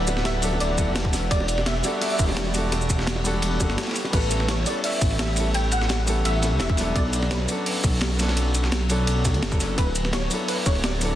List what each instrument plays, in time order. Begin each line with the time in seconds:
Already playing: detuned saw bass D1, grand piano F#3 B3 D4 E4 A4, analog synth pad A4 B4 E5 F#5, synth pluck D5
0.07 closed hi-hat, ride, high bongo, shaker
0.17 snare
0.24 synth pluck E5, snare, closed hi-hat, ride, high bongo
0.41 grand piano F#3 B3 D4 E4 A4, open hi-hat, ride, shaker
0.53 high bongo
0.60 detuned saw bass D1, synth pluck D5, closed hi-hat, ride
0.69 high bongo
0.77 grand piano F#3 B3 D4 E4 A4, kick, closed hi-hat, ride, shaker
0.87 detuned saw bass F#1
0.95 detuned saw bass E1, snare, closed hi-hat, ride, high bongo
0.97 snare
1.05 kick
1.13 analog synth pad G3 D5, snare, open hi-hat, ride, high bongo, shaker
1.31 detuned saw bass E1, synth pluck D5, kick, closed hi-hat, ride
1.40 high bongo
1.48 closed hi-hat, ride, shaker
1.58 snare, ride, high bongo
1.66 synth pluck E5, snare, closed hi-hat, ride
1.75 snare
1.81 grand piano G3 B3 D4, open hi-hat, ride, high bongo, shaker
1.85 grand piano F#4 A4
2.01 synth pluck E5, closed hi-hat, open hi-hat, high bongo
2.19 detuned saw bass E1, kick, closed hi-hat, ride, shaker
2.28 ride, high bongo
2.36 snare, closed hi-hat, ride
2.47 high bongo
2.52 grand piano G3 B3 D4, open hi-hat, ride, shaker
2.56 grand piano F#4 A4
2.72 closed hi-hat, ride, high bongo
2.81 shaker
2.90 kick, closed hi-hat, ride, high bongo, shaker
2.99 snare
3.07 snare, closed hi-hat, ride
3.16 high bongo
3.24 grand piano G3 B3 D4 F#4 A4, open hi-hat, ride, shaker
3.34 high bongo
3.42 detuned saw bass E1, closed hi-hat, ride
3.58 grand piano G3 B3 D4, kick, closed hi-hat, ride, high bongo, shaker
3.62 grand piano F#4 A4
3.70 detuned saw bass G1, snare
3.78 snare, closed hi-hat, ride, high bongo
3.82 snare, ride
3.87 snare, ride
3.91 snare, ride
3.96 open hi-hat, shaker
4.04 ride, high bongo
4.11 detuned saw bass A1, grand piano G3 B3 C#4, synth pluck B4, kick, closed hi-hat, crash, ride
4.15 grand piano E4 A4
4.31 closed hi-hat, ride, shaker
4.40 snare, ride
4.49 synth pluck C#5, snare, closed hi-hat, ride
4.63 grand piano G3 B3 C#4, synth pluck D5, open hi-hat, ride, shaker
4.68 grand piano E4 A4
4.84 synth pluck E5, closed hi-hat, open hi-hat
5.01 detuned saw bass A1, kick, closed hi-hat, ride, shaker
5.11 ride
5.19 synth pluck E5, snare, closed hi-hat, ride
5.34 grand piano G3 B3 C#4, open hi-hat, ride, shaker
5.38 grand piano E4 A4
5.54 synth pluck G5, closed hi-hat, ride
5.71 synth pluck F#5, closed hi-hat, ride, shaker
5.81 snare
5.89 snare, closed hi-hat, ride
6.06 grand piano G3 B3 C#4 E4 A4, open hi-hat, ride, shaker
6.25 detuned saw bass A1, synth pluck E5, closed hi-hat, ride
6.41 grand piano G3 B3 C#4 E4 A4, snare, closed hi-hat, ride, shaker
6.52 detuned saw bass C#2
6.60 detuned saw bass E1, synth pluck E5, snare, closed hi-hat, ride
6.69 kick
6.75 grand piano F#3 B3 E4, snare, open hi-hat, ride, shaker
6.79 grand piano D4 A4
6.96 detuned saw bass B1, synth pluck D5, kick, closed hi-hat, ride
7.13 closed hi-hat, ride, shaker
7.22 snare, ride
7.31 synth pluck B4, snare, closed hi-hat, ride
7.46 grand piano F#3 B3 C#4, open hi-hat, ride, shaker
7.50 grand piano D4 A4
7.66 closed hi-hat, open hi-hat
7.84 detuned saw bass B1, kick, closed hi-hat, ride, shaker
7.93 ride
8.01 snare, closed hi-hat, ride
8.16 grand piano F#3 B3 C#4, snare, open hi-hat, ride, shaker
8.20 grand piano D4 A4
8.28 snare, ride
8.37 closed hi-hat, ride
8.55 closed hi-hat, ride, shaker
8.63 snare
8.72 snare, closed hi-hat, ride
8.81 snare
8.88 grand piano F#3 B3 C#4 D4 A4, open hi-hat, ride, shaker
9.07 detuned saw bass B1, closed hi-hat, ride
9.25 kick, snare, closed hi-hat, ride, shaker
9.34 detuned saw bass D2, closed hi-hat
9.42 detuned saw bass F#1, snare, closed hi-hat, ride
9.50 grand piano F#3 B3 C#4 D4 A4, kick, shaker
9.60 snare, open hi-hat, ride, shaker
9.78 detuned saw bass D1, synth pluck B4, kick, closed hi-hat, ride
9.95 closed hi-hat, ride, shaker
10.04 snare, ride
10.13 synth pluck C#5, snare, closed hi-hat, ride
10.28 grand piano F#3 B3 D4, open hi-hat, ride, shaker
10.32 grand piano E4 A4
10.48 synth pluck B4, closed hi-hat, open hi-hat
10.66 detuned saw bass D1, synth pluck C#5, kick, closed hi-hat, ride, shaker
10.75 ride
10.84 synth pluck D5, snare, closed hi-hat, ride
10.99 grand piano F#3 B3 D4, open hi-hat, ride, shaker
11.03 grand piano E4 A4